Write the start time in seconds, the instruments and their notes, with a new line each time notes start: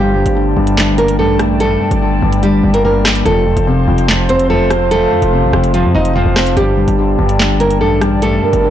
Already playing: 808-style bass G1, grand piano G2, nylon-string guitar G3 G4, ambient pad A3 D5 G5 A5
0.15 grand piano G2
0.26 808-style bass G1, closed hi-hat
0.36 grand piano D3
0.57 808-style bass G1, grand piano G2
0.67 closed hi-hat
0.77 grand piano G2, snare, clap
0.98 grand piano G2, nylon-string guitar A#3 A#4, closed hi-hat
1.08 closed hi-hat
1.19 808-style bass A1, grand piano G2, nylon-string guitar A3 A4
1.39 grand piano A3, cross-stick, closed hi-hat
1.60 grand piano G2, nylon-string guitar A3 A4, closed hi-hat
1.81 grand piano G2
1.91 808-style bass G1, closed hi-hat
2.02 grand piano D3
2.22 808-style bass G1, grand piano G2
2.33 closed hi-hat
2.43 grand piano G2, nylon-string guitar G3 G4, closed hi-hat
2.64 808-style bass G1, grand piano G2
2.74 nylon-string guitar A#3 A#4, closed hi-hat
2.84 grand piano G2, nylon-string guitar A#3 A#4
3.05 grand piano A#3, cross-stick, snare, clap, closed hi-hat
3.15 closed hi-hat
3.25 808-style bass F1, grand piano F2, nylon-string guitar A3 A4, ambient pad C5 F5 A5 C6, closed hi-hat
3.46 grand piano F2
3.57 808-style bass F1, closed hi-hat
3.67 grand piano C3
3.88 808-style bass F1, grand piano F2
3.98 closed hi-hat
4.08 grand piano F2, snare, clap
4.29 grand piano F2, nylon-string guitar C4 C5, closed hi-hat
4.39 closed hi-hat
4.50 grand piano F2, nylon-string guitar A3 A4
4.70 grand piano C4, cross-stick, closed hi-hat
4.91 grand piano F2, nylon-string guitar A3 A4, closed hi-hat
5.12 grand piano F2
5.22 808-style bass F1, closed hi-hat
5.33 grand piano C3
5.43 808-style bass A1
5.53 808-style bass F1, grand piano F2, cross-stick
5.64 closed hi-hat
5.74 grand piano F2, nylon-string guitar F3 F4, closed hi-hat
5.84 808-style bass F2
5.95 808-style bass F1, grand piano F2, nylon-string guitar D#4 D#5
6.05 closed hi-hat
6.15 grand piano F2, nylon-string guitar F3 F4
6.26 808-style bass F1
6.36 grand piano C4, cross-stick, snare, clap, open hi-hat
6.46 closed hi-hat
6.57 808-style bass G1, grand piano G2, nylon-string guitar G3 G4, ambient pad D5 G5, closed hi-hat
6.77 grand piano G2
6.88 808-style bass G1, closed hi-hat
6.98 grand piano D3
7.19 808-style bass G1, grand piano G2
7.29 closed hi-hat
7.39 grand piano G2, snare, clap
7.60 grand piano G2, nylon-string guitar A#3 A#4, closed hi-hat
7.71 closed hi-hat
7.81 808-style bass A1, grand piano G2, nylon-string guitar A3 A4
8.01 grand piano G3, cross-stick, closed hi-hat
8.22 grand piano G2, nylon-string guitar A3 A4, closed hi-hat
8.43 grand piano G2, soft synth lead A#4
8.53 808-style bass G1, closed hi-hat
8.64 grand piano D3